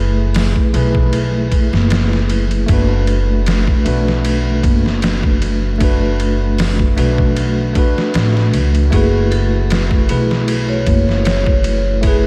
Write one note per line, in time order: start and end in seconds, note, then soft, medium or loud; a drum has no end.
0.00 0.52 F#1 medium
0.00 0.68 A3 medium
0.00 0.69 E4 medium
0.00 0.70 G#4 medium
0.00 0.71 B4 medium
0.34 snare loud
0.34 open hi-hat medium
0.56 kick medium
0.73 1.48 B1 medium
0.73 1.01 A3 medium
0.73 1.02 E4 medium
0.73 1.02 G#4 medium
0.73 1.02 B4 medium
0.73 ride medium
0.95 kick medium
1.13 ride medium
1.51 kick medium
1.51 ride medium
1.73 2.65 F#1 loud
1.73 snare soft
1.90 snare loud
1.90 ride medium
2.13 snare soft
2.30 ride medium
2.51 ride soft
2.67 3.64 F#1 loud
2.67 3.80 A3 medium
2.67 3.81 D4 medium
2.67 kick medium
2.67 ride medium
2.71 3.82 F#4 medium
2.71 3.83 B4 medium
3.07 ride medium
3.46 snare loud
3.46 ride medium
3.67 kick medium
3.85 4.60 B1 medium
3.85 4.13 A3 medium
3.85 4.13 D4 medium
3.85 4.14 F#4 medium
3.85 4.14 B4 medium
3.85 ride medium
4.08 snare soft
4.25 ride medium
4.63 6.94 F#1 medium
4.63 kick medium
4.63 ride medium
4.86 snare soft
5.02 snare loud
5.02 ride medium
5.23 kick medium
5.42 ride medium
5.78 6.92 A3 medium
5.78 6.93 D4 medium
5.78 6.94 F#4 medium
5.78 kick loud
5.78 ride medium
5.84 6.95 B4 medium
6.20 ride medium
6.58 snare loud
6.58 open hi-hat medium
6.79 kick medium
6.96 7.72 B1 medium
6.96 7.24 A3 medium
6.96 7.25 D4 medium
6.96 7.25 F#4 medium
6.96 7.26 B4 medium
6.96 ride medium
7.18 kick medium
7.36 ride medium
7.73 8.87 A3 medium
7.73 8.88 D4 medium
7.73 kick medium
7.73 ride medium
7.77 8.89 F#4 medium
7.77 8.90 B4 medium
7.98 snare soft
8.14 8.53 A1 medium
8.14 snare loud
8.14 ride medium
8.37 snare soft
8.53 8.88 C#2 medium
8.53 ride medium
8.75 ride soft
8.90 10.06 F#1 medium
8.90 10.04 A3 medium
8.90 10.05 E4 medium
8.90 10.06 F#4 medium
8.90 9.28 G#4 medium
8.90 kick medium
8.90 ride medium
8.96 10.07 B4 loud
9.31 9.66 A4 medium
9.31 ride medium
9.70 snare loud
9.70 ride medium
9.91 kick medium
10.09 10.83 B1 medium
10.09 10.36 A3 medium
10.09 10.37 E4 medium
10.09 10.37 G#4 medium
10.09 10.38 B4 medium
10.09 ride medium
10.31 snare soft
10.48 ride medium
10.69 11.20 C#5 medium
10.86 12.27 F#1 loud
10.86 kick medium
10.86 ride medium
11.09 snare soft
11.25 11.96 C#5 medium
11.25 snare loud
11.25 ride medium
11.47 kick medium
11.64 ride medium
12.01 12.27 A3 medium
12.01 12.27 E4 medium
12.01 12.27 G#4 medium
12.01 kick loud
12.01 ride medium
12.05 12.27 G#4 medium
12.05 12.27 B4 medium